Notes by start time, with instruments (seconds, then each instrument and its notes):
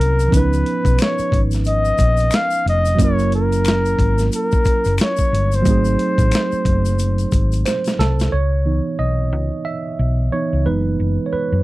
Already playing: tine electric piano F#3 A#3 C#4 E4 A#4, flugelhorn A#4
0.00 fingered electric bass C2, closed hi-hat
0.19 closed hi-hat, shaker
0.28 tine electric piano E3 B3
0.32 fingered electric bass C#2, tine electric piano F3 C#4 D#4, flugelhorn B4, kick, closed hi-hat, shaker
0.37 tine electric piano B4
0.53 closed hi-hat, shaker
0.66 closed hi-hat
0.85 fingered electric bass B1, kick, closed hi-hat, shaker
0.99 flugelhorn C#5, finger snap, snare, closed hi-hat, shaker
1.19 muted fingered electric bass stroke, closed hi-hat, shaker
1.32 fingered electric bass G#1, kick, closed hi-hat
1.51 snare, closed hi-hat, shaker
1.64 flugelhorn D#5, closed hi-hat, shaker
1.85 shaker
1.98 fingered electric bass A#1, kick, closed hi-hat, shaker
2.17 closed hi-hat, shaker
2.31 finger snap, snare, closed hi-hat, shaker
2.35 flugelhorn F5
2.51 shaker
2.66 fingered electric bass F1, flugelhorn D#5, closed hi-hat
2.85 closed hi-hat, shaker
2.95 tine electric piano F#3 A#3, kick
2.99 fingered electric bass F#1, tine electric piano C#4 E4, flugelhorn C#5, closed hi-hat, shaker
3.04 tine electric piano A#4
3.19 closed hi-hat, shaker
3.32 flugelhorn A#4, closed hi-hat
3.52 closed hi-hat, shaker
3.65 finger snap, snare, closed hi-hat, shaker
3.85 closed hi-hat, shaker
3.99 fingered electric bass G#1, kick, closed hi-hat
4.18 snare, closed hi-hat, shaker
4.32 flugelhorn A#4, closed hi-hat, shaker
4.52 kick, shaker
4.65 muted fingered electric bass stroke, kick, closed hi-hat, shaker
4.84 fingered electric bass F#1, closed hi-hat, shaker
4.98 finger snap, snare, closed hi-hat, shaker
5.03 flugelhorn C#5
5.17 kick, shaker
5.33 fingered electric bass G1, closed hi-hat
5.52 flugelhorn C5, closed hi-hat, shaker
5.62 tine electric piano F#3 A3, kick, shaker
5.66 fingered electric bass G#1, tine electric piano C4 D#4, closed hi-hat
5.70 tine electric piano G#4
5.85 closed hi-hat, shaker
5.99 closed hi-hat
6.18 fingered electric bass A1, kick, closed hi-hat, shaker
6.31 finger snap, snare, closed hi-hat, shaker
6.52 muted fingered electric bass stroke, shaker
6.65 fingered electric bass F#1, kick, closed hi-hat
6.85 closed hi-hat, shaker
6.99 closed hi-hat, shaker
7.18 closed hi-hat, shaker
7.32 fingered electric bass G#1, kick, closed hi-hat, shaker
7.52 closed hi-hat, shaker
7.66 tine electric piano C5, finger snap, snare, closed hi-hat, shaker
7.84 snare, closed hi-hat, shaker
7.99 fingered electric bass C2, tine electric piano A4, snare, closed hi-hat
8.20 snare, closed hi-hat, shaker
8.32 fingered electric bass C#2, tine electric piano C#5
8.65 tine electric piano E3 B3 D#4
8.99 fingered electric bass B1, tine electric piano D#5
9.33 fingered electric bass C#2
9.65 tine electric piano E5
9.99 fingered electric bass B1
10.32 tine electric piano E3 B3 D#4 C#5
10.53 fingered electric bass C#2
10.66 fingered electric bass F#1, tine electric piano E3 G#3 B3 D#4 B4
11.00 fingered electric bass F#1
11.26 tine electric piano C#5
11.33 tine electric piano B4, muted fingered electric bass stroke
11.52 fingered electric bass F#2